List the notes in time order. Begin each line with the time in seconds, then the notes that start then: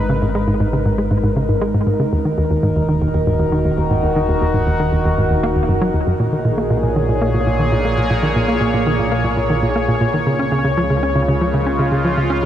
Already playing: G#1 G#3 D#4 A#4 B4
0.09 C#3
0.22 G#2
0.35 G#3
0.48 G#2
0.60 G#2
0.73 C#3
0.86 G#2
0.98 G#3
1.11 G#2
1.23 G#2
1.36 C#3
1.49 G#2
1.62 G#3
1.74 G#2
1.87 G#2
2.00 C#3
2.12 D#1 D#2 D#3
2.25 D#3
2.38 D#2
2.50 D#2
2.63 G#2
2.76 D#2
2.89 D#3 F#4
3.02 D#2
3.14 D#2
3.27 G#2
3.40 D#2
3.52 D#3
3.65 D#2
3.78 D#2
3.91 G#2
4.03 D#2
4.16 D#3
4.29 D#2
4.42 D#2
4.54 G#2
4.67 D#2
4.80 D#3
4.93 D#2
5.05 D#2
5.18 G#2
5.31 D#2
5.43 A#3
5.56 D#2
5.69 F#2
5.82 F#3
5.94 D#2
6.07 F#2
6.20 A#1 A#2
6.32 D#3 G#4
6.45 A#2
6.54 A#3
6.70 A#2
6.83 A#2 C#5
6.96 D#3
7.09 A#2
7.22 A#3
7.34 A#2
7.47 A#2
7.59 D#3
7.72 A#2
7.85 A#3
7.98 A#2
8.10 A#2
8.23 D#3
8.36 A#2
8.48 A#3
8.61 A#2
8.74 A#2
8.87 D#3
8.99 A#2
9.12 A#3
9.24 A#2
9.37 A#2
9.50 D#3
9.63 A#2
9.76 A#3
9.88 A#2
10.01 A#2
10.14 D#3
10.26 C#2 C#3
10.39 C#4
10.52 C#3
10.65 C#3 G#3
10.77 F3
10.90 C#3
11.03 C#4 F4
11.16 C#3
11.28 C#3
11.41 F3
11.54 C#3
11.67 C#4
11.79 C#3
11.92 C#3
12.04 F3
12.17 C#3
12.30 C#4